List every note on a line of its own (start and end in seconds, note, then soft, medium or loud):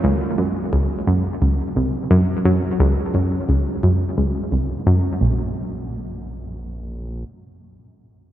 0.00 5.18 A#1 medium
0.00 0.16 C#2 medium
0.38 0.59 F#2 medium
0.73 0.85 C#2 medium
1.07 1.28 F#2 medium
1.42 1.62 C#2 medium
1.76 1.97 C2 medium
2.11 2.23 F#2 medium
2.45 2.58 F#2 medium
2.80 2.92 C#2 medium
3.14 3.35 F#2 medium
3.49 3.61 C#2 medium
3.83 4.04 F#2 medium
4.18 4.38 C#2 medium
4.52 4.73 C2 medium
4.87 4.99 F#2 medium
5.21 5.53 A#1 medium
5.21 7.24 A#1 medium